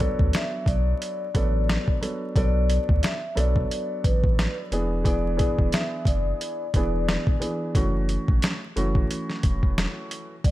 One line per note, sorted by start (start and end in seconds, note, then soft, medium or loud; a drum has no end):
0.00 1.25 F#3 loud
0.00 1.25 B3 medium
0.00 1.25 D4 medium
0.00 1.26 A4 loud
0.00 0.30 D5 loud
0.00 kick medium
0.00 closed hi-hat medium
0.19 0.31 D2 medium
0.19 kick loud
0.33 0.65 E5 medium
0.33 snare loud
0.33 closed hi-hat loud
0.66 0.94 B1 medium
0.66 1.31 D5 medium
0.66 kick medium
0.66 closed hi-hat medium
1.02 closed hi-hat medium
1.34 1.78 A1 loud
1.34 1.97 F#3 medium
1.34 1.97 B3 medium
1.34 1.98 D4 medium
1.34 1.98 A4 loud
1.34 1.85 D5 medium
1.34 kick medium
1.34 closed hi-hat medium
1.69 snare loud
1.69 closed hi-hat medium
1.88 kick loud
2.01 2.33 F#3 medium
2.01 2.33 B3 medium
2.01 2.33 D4 medium
2.01 2.34 A4 medium
2.01 closed hi-hat medium
2.35 2.79 B1 loud
2.35 3.14 F#3 medium
2.35 3.15 B3 medium
2.35 3.15 D4 medium
2.35 3.15 A4 loud
2.35 3.00 D5 loud
2.35 kick loud
2.35 closed hi-hat medium
2.70 closed hi-hat medium
2.89 3.01 D2 medium
2.89 kick loud
3.03 3.33 E5 medium
3.03 snare loud
3.03 closed hi-hat loud
3.35 3.64 B1 loud
3.35 4.71 F#3 medium
3.35 4.71 B3 medium
3.35 4.71 D4 medium
3.35 4.72 A4 loud
3.35 closed hi-hat medium
3.40 4.02 D5 medium
3.56 kick medium
3.71 closed hi-hat medium
4.04 4.47 A1 medium
4.04 4.54 B4 medium
4.04 kick medium
4.04 closed hi-hat medium
4.24 kick medium
4.39 snare loud
4.39 closed hi-hat medium
4.72 5.42 E1 loud
4.72 5.02 E3 medium
4.72 5.03 B3 medium
4.72 5.03 D4 medium
4.72 5.04 G#4 loud
4.72 closed hi-hat medium
5.04 5.35 E3 loud
5.04 5.36 B3 medium
5.04 5.36 D4 medium
5.04 5.37 G#4 loud
5.04 5.68 D5 loud
5.04 kick loud
5.04 closed hi-hat medium
5.37 6.63 E3 medium
5.37 6.64 B3 medium
5.37 6.64 D4 medium
5.37 6.64 G#4 loud
5.37 kick medium
5.37 closed hi-hat medium
5.59 5.70 E1 medium
5.59 kick loud
5.72 6.03 E5 medium
5.72 snare loud
5.72 closed hi-hat loud
6.05 6.33 F#1 medium
6.05 6.70 D5 medium
6.05 kick medium
6.05 closed hi-hat medium
6.41 closed hi-hat loud
6.74 7.17 E1 medium
6.74 7.37 E3 loud
6.74 7.38 B3 medium
6.74 7.38 D4 medium
6.74 7.38 G#4 loud
6.74 7.24 D5 medium
6.74 kick medium
6.74 closed hi-hat medium
7.09 snare loud
7.09 closed hi-hat medium
7.27 kick loud
7.40 7.72 E3 medium
7.40 7.72 B3 medium
7.40 7.72 D4 medium
7.40 7.73 G#4 medium
7.40 closed hi-hat medium
7.75 8.18 F#1 loud
7.75 8.54 E3 medium
7.75 8.54 A3 medium
7.75 8.54 C#4 medium
7.75 8.55 F#4 loud
7.75 kick loud
7.75 closed hi-hat medium
8.09 closed hi-hat medium
8.28 8.40 A1 loud
8.28 kick loud
8.42 snare loud
8.42 closed hi-hat loud
8.76 9.04 F#1 medium
8.76 10.33 E3 medium
8.76 10.33 A3 medium
8.76 10.33 C#4 medium
8.76 10.34 F#4 loud
8.76 closed hi-hat medium
8.95 kick medium
9.11 closed hi-hat loud
9.30 snare soft
9.43 9.86 E1 loud
9.43 kick medium
9.43 closed hi-hat medium
9.63 kick medium
9.78 snare loud
9.78 closed hi-hat medium
10.11 closed hi-hat medium
10.44 10.51 B1 loud
10.44 10.51 D5 loud
10.44 kick loud
10.44 closed hi-hat medium